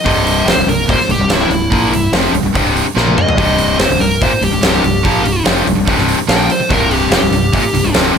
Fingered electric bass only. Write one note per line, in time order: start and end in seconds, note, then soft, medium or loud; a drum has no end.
0.05 0.44 C1 medium
0.46 0.55 F1 loud
0.56 0.66 C1 medium
0.66 0.86 C1 medium
0.89 0.99 D#1 medium
1.09 1.19 C1 medium
1.19 1.29 C1 medium
1.30 1.49 C1 loud
1.50 1.70 C1 medium
1.72 1.91 A#1 medium
1.92 2.12 C1 medium
2.12 2.32 F1 medium
2.33 2.43 C1 medium
2.43 2.54 C1 medium
2.55 2.84 C1 medium
2.85 muted fingered electric bass stroke soft
2.96 3.16 A#1 medium
3.17 muted fingered electric bass stroke soft
3.27 muted fingered electric bass stroke soft
3.38 3.77 C1 medium
3.79 3.89 F1 medium
3.90 3.99 C1 medium
4.00 4.19 C1 medium
4.21 4.30 D#1 loud
4.30 muted fingered electric bass stroke soft
4.41 4.51 C1 medium
4.52 4.62 C1 medium
4.63 4.82 C1 medium
4.83 5.03 C1 medium
5.04 5.24 A#1 medium
5.26 5.45 C1 medium
5.46 5.65 F1 medium
5.67 5.76 C1 medium
5.77 5.86 C1 medium
5.87 6.16 C1 loud
6.28 6.48 A#1 medium
6.50 muted fingered electric bass stroke soft
6.60 muted fingered electric bass stroke soft
6.70 7.09 C1 medium
7.11 7.21 F1 loud
7.22 7.31 C1 medium
7.31 7.51 C1 medium
7.53 7.63 D#1 medium
7.74 7.84 C1 medium
7.85 7.94 C1 medium
7.95 8.14 C1 medium